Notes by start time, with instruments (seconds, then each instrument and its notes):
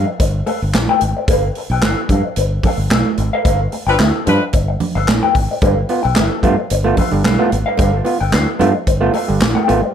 0.07 muted clean electric guitar stroke
0.20 fingered electric bass G1, muted clean electric guitar stroke, kick, closed hi-hat
0.46 clean electric guitar A4 B4 F5, open hi-hat, muted conga
0.62 fingered electric bass G1, muted clean electric guitar stroke
0.74 fingered electric bass A#1, muted clean electric guitar stroke, snare, clap, closed hi-hat, high conga
0.89 clean electric guitar A4 B4 G5, high conga
1.01 fingered electric bass G#1, muted clean electric guitar stroke, closed hi-hat
1.17 muted clean electric guitar stroke
1.28 fingered electric bass G1, clean electric guitar A4 B4 F5, kick, closed hi-hat, muted conga
1.55 muted clean electric guitar stroke, open hi-hat
1.70 fingered electric bass B1, clean electric guitar A4 B4 G5
1.82 fingered electric bass G1, clean electric guitar A4 B4 F5, snare, clap, closed hi-hat, high conga
1.98 muted clean electric guitar stroke
2.09 fingered electric bass G2, clean electric guitar A4 B4 F5, kick, closed hi-hat, low conga
2.25 muted clean electric guitar stroke
2.36 fingered electric bass G1, muted clean electric guitar stroke, closed hi-hat
2.63 clean electric guitar A4 B4 F5, kick, open hi-hat, muted conga, low conga
2.78 fingered electric bass G1, muted clean electric guitar stroke
2.91 fingered electric bass B1, clean electric guitar A4 B4 F5, snare, clap, closed hi-hat, high conga
3.05 high conga
3.17 fingered electric bass G#1, muted clean electric guitar stroke, closed hi-hat
3.33 clean electric guitar A4 B4 F5
3.45 fingered electric bass G1, clean electric guitar A4 B4 F5, kick, closed hi-hat, muted conga
3.72 muted clean electric guitar stroke, open hi-hat, muted conga
3.87 fingered electric bass G1, horn section F3 D4 B4, clean electric guitar A4 B4 G5
3.99 fingered electric bass D2, clean electric guitar A4 B4 F5, snare, clap, closed hi-hat, high conga
4.14 muted clean electric guitar stroke
4.26 fingered electric bass G2, horn section F3 D4 B4, clean electric guitar A4 B4 F5, closed hi-hat, low conga
4.40 muted clean electric guitar stroke
4.53 fingered electric bass G1, muted clean electric guitar stroke, kick, closed hi-hat
4.68 muted clean electric guitar stroke
4.80 open hi-hat, muted conga, low conga
4.95 fingered electric bass G1, clean electric guitar A4 B4 F5
5.08 fingered electric bass A#1, muted clean electric guitar stroke, snare, clap, closed hi-hat, high conga
5.23 clean electric guitar A4 B4 G5, high conga
5.35 fingered electric bass G#1, muted clean electric guitar stroke, kick, open hi-hat
5.51 muted clean electric guitar stroke
5.61 fingered electric bass G1, clav G2 D3, clean electric guitar A4 B4 F5, kick, closed hi-hat, muted conga
5.89 clav B3 F4, muted clean electric guitar stroke, open hi-hat
6.03 fingered electric bass B1, clean electric guitar A4 B4 G5
6.15 fingered electric bass G1, clean electric guitar A4 B4 F5, snare, clap, closed hi-hat, high conga
6.31 muted clean electric guitar stroke
6.43 fingered electric bass G2, clav A3 B3 F4, clean electric guitar A4 B4 F5, kick, closed hi-hat, low conga
6.58 muted clean electric guitar stroke
6.70 fingered electric bass G1, muted clean electric guitar stroke, closed hi-hat
6.84 clav A3 B3 F4
6.97 clean electric guitar A4 B4 F5, kick, open hi-hat, muted conga, low conga
7.12 fingered electric bass G1, clav G2 D3, muted clean electric guitar stroke
7.24 fingered electric bass B1, clav G2 D3, clean electric guitar A4 B4 F5, snare, clap, closed hi-hat, high conga
7.38 clav A3 B3 F4, high conga
7.52 fingered electric bass G#1, clav B3 F4, muted clean electric guitar stroke, closed hi-hat
7.66 clean electric guitar A4 B4 F5
7.78 fingered electric bass G1, clav G2 D3, clean electric guitar A4 B4 F5, kick, closed hi-hat, muted conga
8.04 clav B3 F4, muted clean electric guitar stroke, open hi-hat, muted conga
8.20 fingered electric bass G1, clean electric guitar A4 B4 G5
8.32 fingered electric bass D2, clean electric guitar A4 B4 F5, snare, clap, closed hi-hat, high conga
8.48 muted clean electric guitar stroke
8.59 fingered electric bass G2, clav A3 B3 F4, clean electric guitar A4 B4 F5, closed hi-hat, low conga
8.75 muted clean electric guitar stroke
8.87 fingered electric bass G1, muted clean electric guitar stroke, kick, closed hi-hat
9.01 clav A3 B3 F4
9.14 clean electric guitar A4 B4 F5, open hi-hat, muted conga
9.28 fingered electric bass G1, clav G2 D3, muted clean electric guitar stroke
9.41 fingered electric bass A#1, muted clean electric guitar stroke, snare, clap, closed hi-hat, high conga
9.55 clean electric guitar A4 B4 G5, high conga
9.68 fingered electric bass G#1, clav A3 B3 F4, muted clean electric guitar stroke, closed hi-hat
9.83 muted clean electric guitar stroke